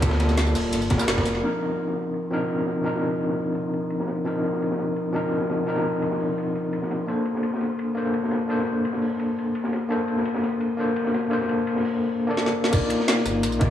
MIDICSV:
0, 0, Header, 1, 4, 480
1, 0, Start_track
1, 0, Tempo, 352941
1, 31, Time_signature, 4, 2, 24, 8
1, 18632, End_track
2, 0, Start_track
2, 0, Title_t, "Tine electric piano"
2, 0, Program_c, 0, 4
2, 0, Control_c, 0, 64, 127
2, 0, Note_on_c, 0, 55, 90
2, 0, Note_on_c, 0, 58, 84
2, 0, Note_on_c, 0, 65, 81
2, 0, Note_on_c, 0, 69, 100
2, 11, Note_off_c, 0, 55, 0
2, 11, Note_on_c, 0, 55, 83
2, 26, Note_off_c, 0, 58, 0
2, 26, Note_on_c, 0, 58, 75
2, 40, Note_off_c, 0, 65, 0
2, 40, Note_on_c, 0, 65, 75
2, 55, Note_off_c, 0, 69, 0
2, 55, Note_on_c, 0, 69, 92
2, 1316, Note_off_c, 0, 55, 0
2, 1327, Note_off_c, 0, 58, 0
2, 1332, Note_on_c, 0, 55, 96
2, 1335, Note_off_c, 0, 65, 0
2, 1342, Note_off_c, 0, 69, 0
2, 1349, Note_on_c, 0, 58, 88
2, 1363, Note_on_c, 0, 65, 89
2, 1378, Note_on_c, 0, 70, 105
2, 1912, Note_off_c, 0, 55, 0
2, 1920, Note_off_c, 0, 58, 0
2, 1927, Note_off_c, 0, 65, 0
2, 1929, Note_on_c, 0, 53, 67
2, 1934, Note_off_c, 0, 70, 0
2, 1940, Note_on_c, 0, 60, 62
2, 1951, Note_on_c, 0, 62, 62
2, 1963, Note_on_c, 0, 63, 64
2, 1968, Control_c, 0, 64, 0
2, 1974, Note_on_c, 0, 70, 76
2, 2181, Control_c, 0, 64, 127
2, 3112, Note_off_c, 0, 53, 0
2, 3118, Note_off_c, 0, 60, 0
2, 3123, Note_off_c, 0, 62, 0
2, 3129, Note_off_c, 0, 63, 0
2, 3129, Note_on_c, 0, 53, 76
2, 3135, Note_off_c, 0, 70, 0
2, 3140, Note_on_c, 0, 60, 69
2, 3151, Note_on_c, 0, 62, 70
2, 3163, Note_on_c, 0, 63, 70
2, 3173, Note_on_c, 0, 70, 87
2, 3832, Note_off_c, 0, 53, 0
2, 3837, Note_off_c, 0, 60, 0
2, 3843, Note_off_c, 0, 62, 0
2, 3849, Note_off_c, 0, 63, 0
2, 3849, Note_on_c, 0, 53, 70
2, 3854, Note_off_c, 0, 70, 0
2, 3859, Note_on_c, 0, 60, 64
2, 3870, Note_on_c, 0, 62, 64
2, 3882, Note_on_c, 0, 63, 65
2, 3894, Note_on_c, 0, 70, 76
2, 5272, Note_off_c, 0, 53, 0
2, 5277, Note_off_c, 0, 60, 0
2, 5283, Note_off_c, 0, 62, 0
2, 5288, Note_off_c, 0, 63, 0
2, 5294, Note_off_c, 0, 70, 0
2, 5770, Note_on_c, 0, 53, 71
2, 5781, Note_on_c, 0, 60, 63
2, 5794, Note_on_c, 0, 62, 64
2, 5804, Note_on_c, 0, 63, 65
2, 5815, Note_on_c, 0, 70, 78
2, 6952, Note_off_c, 0, 53, 0
2, 6958, Note_off_c, 0, 60, 0
2, 6964, Note_off_c, 0, 62, 0
2, 6970, Note_off_c, 0, 63, 0
2, 6970, Note_on_c, 0, 53, 78
2, 6975, Note_off_c, 0, 70, 0
2, 6980, Note_on_c, 0, 60, 73
2, 6993, Note_on_c, 0, 62, 71
2, 7003, Note_on_c, 0, 63, 72
2, 7015, Note_on_c, 0, 70, 88
2, 7672, Note_off_c, 0, 53, 0
2, 7678, Note_off_c, 0, 60, 0
2, 7684, Note_off_c, 0, 62, 0
2, 7689, Note_off_c, 0, 63, 0
2, 7689, Note_on_c, 0, 53, 73
2, 7695, Note_off_c, 0, 70, 0
2, 7701, Note_on_c, 0, 60, 66
2, 7713, Note_on_c, 0, 62, 64
2, 7724, Note_on_c, 0, 63, 67
2, 7734, Note_on_c, 0, 70, 77
2, 9112, Note_off_c, 0, 53, 0
2, 9118, Note_off_c, 0, 60, 0
2, 9124, Note_off_c, 0, 62, 0
2, 9129, Note_off_c, 0, 63, 0
2, 9135, Note_off_c, 0, 70, 0
2, 9608, Note_on_c, 0, 58, 71
2, 9622, Note_on_c, 0, 62, 64
2, 9637, Note_on_c, 0, 69, 63
2, 9647, Control_c, 0, 64, 0
2, 9651, Note_on_c, 0, 72, 75
2, 9874, Control_c, 0, 64, 127
2, 10791, Note_off_c, 0, 58, 0
2, 10799, Note_off_c, 0, 62, 0
2, 10806, Note_off_c, 0, 69, 0
2, 10807, Note_on_c, 0, 58, 79
2, 10813, Note_off_c, 0, 72, 0
2, 10821, Note_on_c, 0, 62, 70
2, 10837, Note_on_c, 0, 69, 70
2, 10851, Note_on_c, 0, 72, 89
2, 11511, Note_off_c, 0, 58, 0
2, 11518, Note_off_c, 0, 62, 0
2, 11526, Note_off_c, 0, 69, 0
2, 11528, Note_on_c, 0, 58, 69
2, 11533, Note_off_c, 0, 72, 0
2, 11543, Note_on_c, 0, 62, 66
2, 11559, Note_on_c, 0, 69, 67
2, 11573, Note_on_c, 0, 72, 77
2, 12952, Note_off_c, 0, 58, 0
2, 12959, Note_off_c, 0, 62, 0
2, 12967, Note_off_c, 0, 69, 0
2, 12974, Note_off_c, 0, 72, 0
2, 13446, Note_on_c, 0, 58, 72
2, 13462, Note_on_c, 0, 62, 66
2, 13477, Note_on_c, 0, 69, 68
2, 13491, Note_on_c, 0, 72, 81
2, 14631, Note_off_c, 0, 58, 0
2, 14638, Note_off_c, 0, 62, 0
2, 14646, Note_off_c, 0, 69, 0
2, 14648, Note_on_c, 0, 58, 79
2, 14653, Note_off_c, 0, 72, 0
2, 14663, Note_on_c, 0, 62, 74
2, 14677, Note_on_c, 0, 69, 74
2, 14692, Note_on_c, 0, 72, 86
2, 15351, Note_off_c, 0, 58, 0
2, 15359, Note_off_c, 0, 62, 0
2, 15366, Note_off_c, 0, 69, 0
2, 15367, Note_on_c, 0, 58, 73
2, 15373, Note_off_c, 0, 72, 0
2, 15382, Note_on_c, 0, 62, 65
2, 15397, Note_on_c, 0, 69, 68
2, 15412, Note_on_c, 0, 72, 82
2, 16675, Note_off_c, 0, 58, 0
2, 16685, Note_off_c, 0, 62, 0
2, 16691, Note_on_c, 0, 58, 86
2, 16693, Note_off_c, 0, 69, 0
2, 16700, Note_off_c, 0, 72, 0
2, 16706, Note_on_c, 0, 62, 79
2, 16721, Note_on_c, 0, 69, 81
2, 16737, Note_on_c, 0, 74, 96
2, 17271, Note_off_c, 0, 58, 0
2, 17279, Note_off_c, 0, 62, 0
2, 17286, Note_off_c, 0, 69, 0
2, 17286, Note_on_c, 0, 58, 77
2, 17294, Note_off_c, 0, 74, 0
2, 17302, Note_on_c, 0, 63, 74
2, 17315, Note_on_c, 0, 65, 73
2, 17329, Control_c, 0, 64, 0
2, 17330, Note_on_c, 0, 74, 88
2, 17539, Control_c, 0, 64, 127
2, 18470, Note_off_c, 0, 58, 0
2, 18478, Note_off_c, 0, 63, 0
2, 18485, Note_off_c, 0, 65, 0
2, 18487, Note_on_c, 0, 58, 87
2, 18493, Note_off_c, 0, 74, 0
2, 18501, Note_on_c, 0, 63, 81
2, 18516, Note_on_c, 0, 65, 81
2, 18531, Note_on_c, 0, 74, 98
2, 18632, Note_off_c, 0, 58, 0
2, 18632, Note_off_c, 0, 63, 0
2, 18632, Note_off_c, 0, 65, 0
2, 18632, Note_off_c, 0, 74, 0
2, 18632, End_track
3, 0, Start_track
3, 0, Title_t, "Sub bass"
3, 0, Program_c, 1, 38
3, 0, Note_on_c, 1, 38, 99
3, 733, Note_off_c, 1, 38, 0
3, 749, Note_on_c, 1, 26, 100
3, 967, Note_off_c, 1, 26, 0
3, 989, Note_on_c, 1, 31, 101
3, 1231, Note_on_c, 1, 26, 98
3, 1251, Note_off_c, 1, 31, 0
3, 1342, Note_off_c, 1, 26, 0
3, 1469, Note_on_c, 1, 29, 106
3, 1687, Note_off_c, 1, 29, 0
3, 1712, Note_on_c, 1, 29, 95
3, 1928, Note_off_c, 1, 29, 0
3, 17311, Note_on_c, 1, 36, 99
3, 17422, Note_off_c, 1, 36, 0
3, 18028, Note_on_c, 1, 31, 97
3, 18268, Note_on_c, 1, 34, 97
3, 18289, Note_off_c, 1, 31, 0
3, 18509, Note_on_c, 1, 36, 93
3, 18530, Note_off_c, 1, 34, 0
3, 18632, Note_off_c, 1, 36, 0
3, 18632, End_track
4, 0, Start_track
4, 0, Title_t, "Drums"
4, 26, Note_on_c, 9, 38, 112
4, 31, Note_on_c, 9, 51, 86
4, 32, Note_on_c, 9, 36, 120
4, 33, Note_on_c, 9, 42, 99
4, 33, Note_on_c, 9, 53, 74
4, 33, Note_on_c, 9, 54, 51
4, 150, Note_off_c, 9, 51, 0
4, 150, Note_on_c, 9, 51, 81
4, 155, Note_off_c, 9, 38, 0
4, 155, Note_on_c, 9, 38, 106
4, 168, Note_off_c, 9, 36, 0
4, 169, Note_off_c, 9, 42, 0
4, 169, Note_off_c, 9, 53, 0
4, 169, Note_off_c, 9, 54, 0
4, 270, Note_on_c, 9, 42, 70
4, 270, Note_on_c, 9, 53, 54
4, 273, Note_off_c, 9, 51, 0
4, 273, Note_on_c, 9, 51, 88
4, 274, Note_off_c, 9, 38, 0
4, 274, Note_on_c, 9, 38, 106
4, 391, Note_off_c, 9, 51, 0
4, 391, Note_on_c, 9, 51, 75
4, 393, Note_on_c, 9, 54, 29
4, 397, Note_off_c, 9, 38, 0
4, 397, Note_on_c, 9, 38, 104
4, 406, Note_off_c, 9, 42, 0
4, 406, Note_off_c, 9, 53, 0
4, 510, Note_off_c, 9, 38, 0
4, 510, Note_off_c, 9, 54, 0
4, 510, Note_on_c, 9, 38, 114
4, 510, Note_on_c, 9, 42, 99
4, 510, Note_on_c, 9, 53, 75
4, 510, Note_on_c, 9, 54, 51
4, 520, Note_off_c, 9, 38, 0
4, 520, Note_off_c, 9, 51, 0
4, 520, Note_on_c, 9, 38, 121
4, 520, Note_on_c, 9, 51, 89
4, 633, Note_off_c, 9, 38, 0
4, 633, Note_off_c, 9, 54, 0
4, 633, Note_on_c, 9, 38, 54
4, 633, Note_on_c, 9, 54, 29
4, 646, Note_off_c, 9, 42, 0
4, 646, Note_off_c, 9, 53, 0
4, 656, Note_off_c, 9, 51, 0
4, 750, Note_off_c, 9, 54, 0
4, 750, Note_on_c, 9, 37, 34
4, 750, Note_on_c, 9, 46, 72
4, 750, Note_on_c, 9, 53, 52
4, 750, Note_on_c, 9, 54, 61
4, 761, Note_off_c, 9, 46, 0
4, 761, Note_on_c, 9, 46, 88
4, 769, Note_off_c, 9, 38, 0
4, 886, Note_off_c, 9, 37, 0
4, 886, Note_off_c, 9, 53, 0
4, 886, Note_off_c, 9, 54, 0
4, 897, Note_off_c, 9, 46, 0
4, 989, Note_on_c, 9, 42, 98
4, 989, Note_on_c, 9, 53, 74
4, 989, Note_on_c, 9, 54, 52
4, 1002, Note_on_c, 9, 51, 79
4, 1113, Note_off_c, 9, 54, 0
4, 1113, Note_on_c, 9, 54, 29
4, 1125, Note_off_c, 9, 42, 0
4, 1125, Note_off_c, 9, 53, 0
4, 1138, Note_off_c, 9, 51, 0
4, 1226, Note_on_c, 9, 42, 72
4, 1226, Note_on_c, 9, 53, 53
4, 1231, Note_on_c, 9, 36, 106
4, 1238, Note_on_c, 9, 38, 108
4, 1238, Note_on_c, 9, 51, 79
4, 1249, Note_off_c, 9, 54, 0
4, 1351, Note_off_c, 9, 38, 0
4, 1351, Note_on_c, 9, 37, 48
4, 1351, Note_on_c, 9, 38, 50
4, 1351, Note_on_c, 9, 54, 60
4, 1362, Note_off_c, 9, 42, 0
4, 1362, Note_off_c, 9, 53, 0
4, 1367, Note_off_c, 9, 36, 0
4, 1374, Note_off_c, 9, 51, 0
4, 1468, Note_off_c, 9, 38, 0
4, 1468, Note_off_c, 9, 54, 0
4, 1468, Note_on_c, 9, 38, 117
4, 1468, Note_on_c, 9, 42, 97
4, 1468, Note_on_c, 9, 53, 73
4, 1468, Note_on_c, 9, 54, 52
4, 1472, Note_on_c, 9, 51, 63
4, 1476, Note_off_c, 9, 38, 0
4, 1476, Note_on_c, 9, 38, 34
4, 1487, Note_off_c, 9, 37, 0
4, 1594, Note_off_c, 9, 38, 0
4, 1594, Note_on_c, 9, 36, 59
4, 1594, Note_on_c, 9, 38, 111
4, 1600, Note_off_c, 9, 51, 0
4, 1600, Note_on_c, 9, 51, 89
4, 1604, Note_off_c, 9, 42, 0
4, 1604, Note_off_c, 9, 53, 0
4, 1604, Note_off_c, 9, 54, 0
4, 1707, Note_on_c, 9, 46, 76
4, 1707, Note_on_c, 9, 53, 52
4, 1707, Note_on_c, 9, 54, 30
4, 1709, Note_off_c, 9, 38, 0
4, 1709, Note_on_c, 9, 38, 57
4, 1730, Note_off_c, 9, 36, 0
4, 1736, Note_off_c, 9, 51, 0
4, 1832, Note_off_c, 9, 38, 0
4, 1832, Note_on_c, 9, 38, 38
4, 1832, Note_on_c, 9, 51, 66
4, 1843, Note_off_c, 9, 46, 0
4, 1843, Note_off_c, 9, 53, 0
4, 1843, Note_off_c, 9, 54, 0
4, 1959, Note_off_c, 9, 51, 0
4, 1959, Note_on_c, 9, 51, 72
4, 1968, Note_off_c, 9, 38, 0
4, 2095, Note_off_c, 9, 51, 0
4, 2195, Note_on_c, 9, 51, 60
4, 2304, Note_on_c, 9, 38, 38
4, 2331, Note_off_c, 9, 51, 0
4, 2423, Note_on_c, 9, 51, 70
4, 2440, Note_off_c, 9, 38, 0
4, 2556, Note_on_c, 9, 38, 45
4, 2559, Note_off_c, 9, 51, 0
4, 2665, Note_off_c, 9, 38, 0
4, 2665, Note_on_c, 9, 38, 34
4, 2671, Note_on_c, 9, 51, 57
4, 2801, Note_off_c, 9, 38, 0
4, 2807, Note_off_c, 9, 51, 0
4, 2905, Note_on_c, 9, 51, 72
4, 3041, Note_off_c, 9, 51, 0
4, 3154, Note_on_c, 9, 51, 54
4, 3290, Note_off_c, 9, 51, 0
4, 3393, Note_on_c, 9, 51, 79
4, 3523, Note_on_c, 9, 38, 40
4, 3529, Note_off_c, 9, 51, 0
4, 3628, Note_off_c, 9, 38, 0
4, 3628, Note_on_c, 9, 38, 40
4, 3637, Note_on_c, 9, 51, 62
4, 3764, Note_off_c, 9, 38, 0
4, 3773, Note_off_c, 9, 51, 0
4, 3869, Note_on_c, 9, 51, 79
4, 3995, Note_on_c, 9, 38, 44
4, 4005, Note_off_c, 9, 51, 0
4, 4107, Note_on_c, 9, 51, 61
4, 4131, Note_off_c, 9, 38, 0
4, 4243, Note_off_c, 9, 51, 0
4, 4362, Note_on_c, 9, 51, 69
4, 4473, Note_on_c, 9, 38, 43
4, 4498, Note_off_c, 9, 51, 0
4, 4599, Note_on_c, 9, 46, 66
4, 4609, Note_off_c, 9, 38, 0
4, 4735, Note_off_c, 9, 46, 0
4, 4824, Note_on_c, 9, 51, 75
4, 4960, Note_off_c, 9, 51, 0
4, 5078, Note_on_c, 9, 51, 54
4, 5214, Note_off_c, 9, 51, 0
4, 5306, Note_on_c, 9, 51, 77
4, 5438, Note_on_c, 9, 38, 51
4, 5442, Note_off_c, 9, 51, 0
4, 5544, Note_on_c, 9, 51, 58
4, 5546, Note_off_c, 9, 38, 0
4, 5546, Note_on_c, 9, 38, 47
4, 5680, Note_off_c, 9, 51, 0
4, 5682, Note_off_c, 9, 38, 0
4, 5793, Note_on_c, 9, 51, 78
4, 5929, Note_off_c, 9, 51, 0
4, 6038, Note_on_c, 9, 51, 67
4, 6154, Note_on_c, 9, 38, 38
4, 6174, Note_off_c, 9, 51, 0
4, 6285, Note_on_c, 9, 51, 80
4, 6290, Note_off_c, 9, 38, 0
4, 6401, Note_on_c, 9, 38, 51
4, 6421, Note_off_c, 9, 51, 0
4, 6514, Note_off_c, 9, 38, 0
4, 6514, Note_on_c, 9, 38, 36
4, 6516, Note_on_c, 9, 51, 56
4, 6650, Note_off_c, 9, 38, 0
4, 6652, Note_off_c, 9, 51, 0
4, 6747, Note_on_c, 9, 51, 72
4, 6883, Note_off_c, 9, 51, 0
4, 6995, Note_on_c, 9, 51, 65
4, 7131, Note_off_c, 9, 51, 0
4, 7231, Note_on_c, 9, 51, 74
4, 7357, Note_on_c, 9, 38, 44
4, 7367, Note_off_c, 9, 51, 0
4, 7471, Note_on_c, 9, 51, 61
4, 7476, Note_off_c, 9, 38, 0
4, 7476, Note_on_c, 9, 38, 48
4, 7607, Note_off_c, 9, 51, 0
4, 7612, Note_off_c, 9, 38, 0
4, 7711, Note_on_c, 9, 51, 81
4, 7837, Note_on_c, 9, 38, 45
4, 7847, Note_off_c, 9, 51, 0
4, 7950, Note_on_c, 9, 51, 63
4, 7973, Note_off_c, 9, 38, 0
4, 8086, Note_off_c, 9, 51, 0
4, 8189, Note_on_c, 9, 51, 84
4, 8313, Note_on_c, 9, 38, 48
4, 8325, Note_off_c, 9, 51, 0
4, 8433, Note_on_c, 9, 46, 73
4, 8449, Note_off_c, 9, 38, 0
4, 8569, Note_off_c, 9, 46, 0
4, 8673, Note_on_c, 9, 51, 77
4, 8809, Note_off_c, 9, 51, 0
4, 8913, Note_on_c, 9, 51, 61
4, 9049, Note_off_c, 9, 51, 0
4, 9149, Note_on_c, 9, 51, 83
4, 9280, Note_on_c, 9, 38, 46
4, 9285, Note_off_c, 9, 51, 0
4, 9382, Note_off_c, 9, 38, 0
4, 9382, Note_on_c, 9, 38, 51
4, 9395, Note_on_c, 9, 51, 59
4, 9518, Note_off_c, 9, 38, 0
4, 9531, Note_off_c, 9, 51, 0
4, 9630, Note_on_c, 9, 51, 81
4, 9766, Note_off_c, 9, 51, 0
4, 9863, Note_on_c, 9, 51, 64
4, 9996, Note_on_c, 9, 38, 40
4, 9999, Note_off_c, 9, 51, 0
4, 10103, Note_on_c, 9, 51, 82
4, 10132, Note_off_c, 9, 38, 0
4, 10239, Note_off_c, 9, 51, 0
4, 10249, Note_on_c, 9, 38, 48
4, 10346, Note_on_c, 9, 51, 66
4, 10352, Note_off_c, 9, 38, 0
4, 10352, Note_on_c, 9, 38, 39
4, 10482, Note_off_c, 9, 51, 0
4, 10488, Note_off_c, 9, 38, 0
4, 10590, Note_on_c, 9, 51, 82
4, 10726, Note_off_c, 9, 51, 0
4, 10838, Note_on_c, 9, 51, 58
4, 10974, Note_off_c, 9, 51, 0
4, 11064, Note_on_c, 9, 51, 77
4, 11200, Note_off_c, 9, 51, 0
4, 11200, Note_on_c, 9, 38, 42
4, 11303, Note_on_c, 9, 51, 64
4, 11313, Note_off_c, 9, 38, 0
4, 11313, Note_on_c, 9, 38, 48
4, 11439, Note_off_c, 9, 51, 0
4, 11449, Note_off_c, 9, 38, 0
4, 11556, Note_on_c, 9, 51, 78
4, 11676, Note_on_c, 9, 38, 44
4, 11692, Note_off_c, 9, 51, 0
4, 11785, Note_on_c, 9, 51, 61
4, 11812, Note_off_c, 9, 38, 0
4, 11921, Note_off_c, 9, 51, 0
4, 12032, Note_on_c, 9, 51, 71
4, 12146, Note_on_c, 9, 38, 44
4, 12168, Note_off_c, 9, 51, 0
4, 12265, Note_on_c, 9, 46, 74
4, 12282, Note_off_c, 9, 38, 0
4, 12401, Note_off_c, 9, 46, 0
4, 12505, Note_on_c, 9, 51, 76
4, 12641, Note_off_c, 9, 51, 0
4, 12762, Note_on_c, 9, 51, 65
4, 12898, Note_off_c, 9, 51, 0
4, 12986, Note_on_c, 9, 51, 79
4, 13107, Note_on_c, 9, 38, 51
4, 13122, Note_off_c, 9, 51, 0
4, 13223, Note_off_c, 9, 38, 0
4, 13223, Note_on_c, 9, 38, 45
4, 13230, Note_on_c, 9, 51, 64
4, 13359, Note_off_c, 9, 38, 0
4, 13366, Note_off_c, 9, 51, 0
4, 13468, Note_on_c, 9, 51, 81
4, 13604, Note_off_c, 9, 51, 0
4, 13707, Note_on_c, 9, 51, 55
4, 13832, Note_on_c, 9, 38, 44
4, 13843, Note_off_c, 9, 51, 0
4, 13943, Note_on_c, 9, 51, 86
4, 13968, Note_off_c, 9, 38, 0
4, 14071, Note_on_c, 9, 38, 55
4, 14079, Note_off_c, 9, 51, 0
4, 14189, Note_off_c, 9, 38, 0
4, 14189, Note_on_c, 9, 38, 38
4, 14191, Note_on_c, 9, 51, 62
4, 14325, Note_off_c, 9, 38, 0
4, 14327, Note_off_c, 9, 51, 0
4, 14421, Note_on_c, 9, 51, 75
4, 14557, Note_off_c, 9, 51, 0
4, 14678, Note_on_c, 9, 51, 58
4, 14814, Note_off_c, 9, 51, 0
4, 14907, Note_on_c, 9, 51, 84
4, 15035, Note_on_c, 9, 38, 45
4, 15043, Note_off_c, 9, 51, 0
4, 15150, Note_off_c, 9, 38, 0
4, 15150, Note_on_c, 9, 38, 43
4, 15151, Note_on_c, 9, 51, 61
4, 15286, Note_off_c, 9, 38, 0
4, 15287, Note_off_c, 9, 51, 0
4, 15378, Note_on_c, 9, 51, 78
4, 15514, Note_off_c, 9, 51, 0
4, 15516, Note_on_c, 9, 38, 41
4, 15626, Note_on_c, 9, 51, 64
4, 15652, Note_off_c, 9, 38, 0
4, 15762, Note_off_c, 9, 51, 0
4, 15869, Note_on_c, 9, 51, 72
4, 15996, Note_on_c, 9, 38, 50
4, 16005, Note_off_c, 9, 51, 0
4, 16112, Note_on_c, 9, 46, 75
4, 16132, Note_off_c, 9, 38, 0
4, 16248, Note_off_c, 9, 46, 0
4, 16828, Note_on_c, 9, 38, 56
4, 16950, Note_off_c, 9, 38, 0
4, 16950, Note_on_c, 9, 38, 58
4, 17086, Note_off_c, 9, 38, 0
4, 17191, Note_on_c, 9, 38, 79
4, 17309, Note_on_c, 9, 42, 92
4, 17309, Note_on_c, 9, 49, 104
4, 17309, Note_on_c, 9, 54, 49
4, 17310, Note_on_c, 9, 36, 123
4, 17314, Note_on_c, 9, 51, 85
4, 17327, Note_off_c, 9, 38, 0
4, 17445, Note_off_c, 9, 42, 0
4, 17445, Note_off_c, 9, 49, 0
4, 17445, Note_off_c, 9, 54, 0
4, 17446, Note_off_c, 9, 36, 0
4, 17450, Note_off_c, 9, 51, 0
4, 17540, Note_on_c, 9, 51, 68
4, 17549, Note_on_c, 9, 42, 70
4, 17676, Note_off_c, 9, 51, 0
4, 17676, Note_on_c, 9, 38, 44
4, 17685, Note_off_c, 9, 42, 0
4, 17789, Note_off_c, 9, 38, 0
4, 17789, Note_on_c, 9, 38, 119
4, 17789, Note_on_c, 9, 42, 97
4, 17789, Note_on_c, 9, 54, 50
4, 17794, Note_off_c, 9, 38, 0
4, 17794, Note_on_c, 9, 38, 115
4, 17794, Note_on_c, 9, 51, 89
4, 17915, Note_off_c, 9, 38, 0
4, 17915, Note_on_c, 9, 38, 62
4, 17925, Note_off_c, 9, 42, 0
4, 17925, Note_off_c, 9, 54, 0
4, 17930, Note_off_c, 9, 51, 0
4, 18027, Note_on_c, 9, 37, 34
4, 18027, Note_on_c, 9, 46, 74
4, 18027, Note_on_c, 9, 54, 58
4, 18031, Note_off_c, 9, 38, 0
4, 18031, Note_on_c, 9, 38, 43
4, 18032, Note_on_c, 9, 51, 65
4, 18163, Note_off_c, 9, 37, 0
4, 18163, Note_off_c, 9, 46, 0
4, 18163, Note_off_c, 9, 54, 0
4, 18167, Note_off_c, 9, 38, 0
4, 18168, Note_off_c, 9, 51, 0
4, 18268, Note_on_c, 9, 37, 37
4, 18268, Note_on_c, 9, 42, 95
4, 18268, Note_on_c, 9, 54, 50
4, 18271, Note_on_c, 9, 51, 89
4, 18391, Note_off_c, 9, 54, 0
4, 18391, Note_on_c, 9, 54, 28
4, 18404, Note_off_c, 9, 37, 0
4, 18404, Note_off_c, 9, 42, 0
4, 18407, Note_off_c, 9, 51, 0
4, 18508, Note_on_c, 9, 42, 70
4, 18510, Note_on_c, 9, 36, 104
4, 18511, Note_on_c, 9, 51, 69
4, 18527, Note_off_c, 9, 54, 0
4, 18632, Note_off_c, 9, 36, 0
4, 18632, Note_off_c, 9, 42, 0
4, 18632, Note_off_c, 9, 51, 0
4, 18632, End_track
0, 0, End_of_file